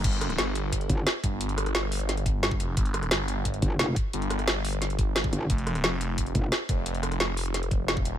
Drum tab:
CC |x---------------|----------------|----------------|----------------|
HH |xxxxx-x-xxx-x-x-|xxxxx-oxxxx-x-x-|xxxxx-x-xxx-x-x-|xxxxx-oxxxx-x-x-|
SD |--rro-------o---|--rro---o---o---|--rro-------o---|--rro---o---o---|
BD |o-------o-o---o-|----------o--o--|o-------o-o---o-|----------o--o--|

CC |----------------|----------------|
HH |xxxxx-x-xxx-x-x-|xxxxx-oxxxx-x-x-|
SD |--rro-------o---|--rro---o---o---|
BD |o-------o-o---o-|----------o--o--|